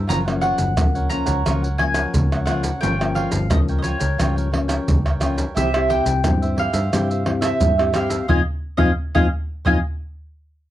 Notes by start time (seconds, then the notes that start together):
0.07 F#1 F#2 F3 A#3 C#4 F4 A#4 C#5 F#5 A#5, pandeiro, maracas, surdo
0.26 F3 A#3 C#4 A#4 C#5 F#5, pandeiro, tamborim, maracas
0.41 F4 A#4 C#5 F#5, pandeiro
0.58 F#1, muted cavaquinho stroke, pandeiro, maracas, surdo
0.77 C#2 C#3 F3 A#3 C#4, pandeiro, tamborim, maracas, surdo
0.95 A#4 C#5 F#5, pandeiro, maracas
1.09 F3 A#3 C#4 F4 A#4 C#5 F#5 A#5, pandeiro, maracas
1.26 C#2 A#4 C#5 F#5, pandeiro, maracas, surdo
1.45 C#2 F#2 F3 A#3 C#4 F4 A#4 C#5 F#5, pandeiro, tamborim, maracas, surdo
1.63 A#4 C#5 F#5, pandeiro, maracas
1.78 F3 A#3 C#4 G#5, muted cavaquinho stroke, pandeiro, tamborim, surdo
1.94 A#4 C#5 F#5, pandeiro, tamborim, maracas
2.14 C#2 C#3, pandeiro, maracas, surdo
2.32 A#4 C#5 F#5, pandeiro, tamborim, maracas
2.46 F3 A#3 C#4 F4 A#4 C#5 F#5, pandeiro, tamborim, maracas
2.63 A#4 C#5 F#5, pandeiro, maracas, surdo
2.81 G1 G2 F3 A#3 C#4 F4 A#4 C#5 G5, pandeiro, maracas, surdo
2.99 F3 A#3 C#4 A#4 C#5 G5, pandeiro, tamborim, maracas
3.15 F4 A#4 C#5 F5 G5, pandeiro
3.31 G1, muted cavaquinho stroke, pandeiro, maracas, surdo
3.50 C#2 G2 F3 A#3 C#4 D#5, pandeiro, tamborim, maracas, surdo
3.68 A#4 C#5 G5, pandeiro, maracas
3.78 C#5 D#5
3.84 F4 A#4 C#5 G5, pandeiro, maracas
3.99 C#2 A#4 C#5 G5, pandeiro, maracas, surdo
4.18 C#2 G2 F3 A#3 C#4 F4 A#4 C#5 G5, pandeiro, tamborim, maracas, surdo
4.36 A#4 C#5 G5, pandeiro, maracas
4.52 F3 A#3 C#4, muted cavaquinho stroke, pandeiro, tamborim, surdo
4.68 A#4 C#5 G5, pandeiro, tamborim, maracas
4.88 C#2 G2, pandeiro, maracas, surdo
5.05 A#4 C#5 G5, pandeiro, tamborim, maracas
5.20 F3 A#3 C#4 F4 A#4 C#5 G5, pandeiro, tamborim, maracas
5.36 A#4 C#5 G5, pandeiro, maracas, surdo
5.55 C2 C3 C4 E4 G4 C5 E5, pandeiro, maracas, surdo
5.73 C4 E4 G4 C5 E5, pandeiro, tamborim, maracas
5.88 E4 G4 C5 E5 G5, pandeiro, surdo
6.05 C2, muted cavaquinho stroke, pandeiro, maracas, surdo
6.24 G2 C4 E4 G4, pandeiro, tamborim, maracas, surdo
6.42 G4 C5 E5, pandeiro, maracas
6.56 E4 G4 C5 E5 F5, pandeiro
6.73 G2 G4 C5 E5, pandeiro, maracas, surdo
6.92 G2 C3 C4 E4 G4 C5 E5, pandeiro, tamborim, maracas, surdo
7.09 G4 C5 E5, pandeiro, maracas
7.26 C4 E4 G4, muted cavaquinho stroke, pandeiro, tamborim, surdo
7.41 G4 C5 E5, pandeiro, tamborim, maracas
7.61 G2, pandeiro, maracas, surdo
7.78 C4 E4 G4 C5 E5, pandeiro, tamborim, maracas
7.92 C4 E4 G4 C5 E5 F5, pandeiro, tamborim, maracas
8.09 G4 C5 E5, pandeiro, maracas, surdo
8.28 F2 C4 D#4 F4 C5 D#5 F5 G#5, surdo
8.77 F2 C4 D#4 F4 C5 D#5 F5 G#5, surdo
9.15 F2 C4 D#4 F4 C5 D#5 F5 G#5, surdo
9.65 F2 C4 D#4 F4 C5 D#5 F5 G#5, surdo